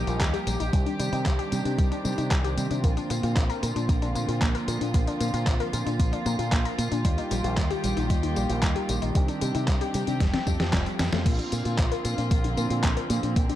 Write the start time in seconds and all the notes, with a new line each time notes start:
Already playing: F3 G3 A#3 D#4 G4
0.07 A#1 F4, closed hi-hat, tambourine
0.20 D#2 G3, kick, clap, closed hi-hat, tambourine
0.34 G4, closed hi-hat, tambourine
0.47 A#1 G3, closed hi-hat, tambourine
0.60 A#1 D#4, closed hi-hat, tambourine
0.73 C2 D#3 G3 C4 D4, kick, closed hi-hat, tambourine
0.86 D4, closed hi-hat, tambourine
0.99 C3 G3, closed hi-hat, tambourine
1.13 C3 D#4, closed hi-hat, tambourine
1.26 C2 G3, kick, clap, closed hi-hat, tambourine
1.39 G4, closed hi-hat, tambourine
1.52 C3 G3, closed hi-hat, tambourine
1.65 C3 D4, closed hi-hat, tambourine
1.78 C2 G3, kick, closed hi-hat, tambourine
1.92 D4, closed hi-hat, tambourine
2.05 C3 G3, closed hi-hat, tambourine
2.18 C3 D#4, closed hi-hat, tambourine
2.31 C2 G3, kick, clap, closed hi-hat, tambourine
2.44 G4, closed hi-hat, tambourine
2.57 C3 G3, closed hi-hat, tambourine
2.71 C3 D4, closed hi-hat, tambourine
2.84 A#1 D3 F3 A#3 F4, kick, closed hi-hat, tambourine
2.97 D4, closed hi-hat, tambourine
3.10 A#2 A#3, closed hi-hat, tambourine
3.23 A#2 F4, closed hi-hat, tambourine
3.36 A#1 A#3, kick, clap, closed hi-hat, tambourine
3.50 A#4, closed hi-hat, tambourine
3.63 A#2 A#3, closed hi-hat, tambourine
3.76 A#2 D4, closed hi-hat, tambourine
3.89 A#1 A#3, kick, closed hi-hat, tambourine
4.02 D4, closed hi-hat, tambourine
4.15 A#2 A#3, closed hi-hat, tambourine
4.28 A#2 F4, closed hi-hat, tambourine
4.42 A#1 A#3, kick, clap, closed hi-hat, tambourine
4.55 A#4, closed hi-hat, tambourine
4.68 A#2 A#3, closed hi-hat, tambourine
4.81 A#2 D4, closed hi-hat, tambourine
4.94 A#1 A#3, kick, closed hi-hat, tambourine
5.07 D4, closed hi-hat, tambourine
5.20 A#2 A#3, closed hi-hat, tambourine
5.34 A#2 F4, closed hi-hat, tambourine
5.47 A#1 A#3, kick, clap, closed hi-hat, tambourine
5.60 A#4, closed hi-hat, tambourine
5.73 A#2 A#3, closed hi-hat, tambourine
5.86 A#2 D4, closed hi-hat, tambourine
5.99 A#1 A#3, kick, closed hi-hat, tambourine
6.13 D4, closed hi-hat, tambourine
6.26 A#2 A#3, closed hi-hat, tambourine
6.39 A#2 F4, closed hi-hat, tambourine
6.52 A#1 A#3, kick, clap, closed hi-hat, tambourine
6.65 A#4, closed hi-hat, tambourine
6.78 A#2 A#3, closed hi-hat, tambourine
6.92 A#2 D4, closed hi-hat, tambourine
7.05 D#2 D#3 G3 G4, kick, closed hi-hat, tambourine
7.18 D#4, closed hi-hat, tambourine
7.31 A#1 G3, closed hi-hat, tambourine
7.44 A#1 F4, closed hi-hat, tambourine
7.57 D#2 G3, kick, clap, closed hi-hat, tambourine
7.71 G4, closed hi-hat, tambourine
7.84 A#1 G3, closed hi-hat, tambourine
7.97 A#1 D#4, closed hi-hat, tambourine
8.10 D#2 G3, kick, closed hi-hat, tambourine
8.23 D#4, closed hi-hat, tambourine
8.36 A#1 G3, closed hi-hat, tambourine
8.49 A#1 F4, closed hi-hat, tambourine
8.63 D#2 G3, kick, clap, closed hi-hat, tambourine
8.76 G4, closed hi-hat, tambourine
8.89 A#1 G3, closed hi-hat, tambourine
9.02 A#1 D#4, closed hi-hat, tambourine
9.15 C2 G3 C4 D4 G4, kick, closed hi-hat, tambourine
9.28 D4, closed hi-hat, tambourine
9.41 C3 G3, closed hi-hat, tambourine
9.55 C3 D#4, closed hi-hat, tambourine
9.68 C2 G3, kick, clap, closed hi-hat, tambourine
9.81 G4, closed hi-hat, tambourine
9.94 C3 G3, closed hi-hat, tambourine
10.07 C3 D4, closed hi-hat, tambourine
10.20 F1 F3 G3 A3, kick, snare, closed hi-hat, tambourine
10.34 C4, snare, closed hi-hat, tambourine
10.47 F2 G3, kick, closed hi-hat, tambourine
10.60 F2 G4, snare, closed hi-hat, tambourine
10.73 F1 G3, kick, snare, clap, closed hi-hat, tambourine
10.86 G4, closed hi-hat, tambourine
10.99 F2 A4, snare, closed hi-hat, tambourine
11.13 F2 A3, snare, closed hi-hat, tambourine
11.26 A#1 D3 F3 A#3 C4 F4, kick, closed hi-hat, tambourine, crash
11.39 D4, closed hi-hat, tambourine
11.52 A#2 A#3, closed hi-hat, tambourine
11.65 A#2 F4, closed hi-hat, tambourine
11.78 A#1 A#3, kick, clap, closed hi-hat, tambourine
11.92 A#4, closed hi-hat, tambourine
12.05 A#2 A#3, closed hi-hat, tambourine
12.18 A#2 D4, closed hi-hat, tambourine
12.31 A#1 A#3, kick, closed hi-hat, tambourine
12.44 D4, closed hi-hat, tambourine
12.57 A#2 A#3, closed hi-hat, tambourine
12.70 A#2 F4, closed hi-hat, tambourine
12.84 A#1 A#3, kick, clap, closed hi-hat, tambourine
12.97 A#4, closed hi-hat, tambourine
13.10 A#2 A#3, closed hi-hat, tambourine
13.23 A#2 D4, closed hi-hat, tambourine
13.36 A#1 A#3 G4, kick, closed hi-hat, tambourine
13.49 D4, closed hi-hat, tambourine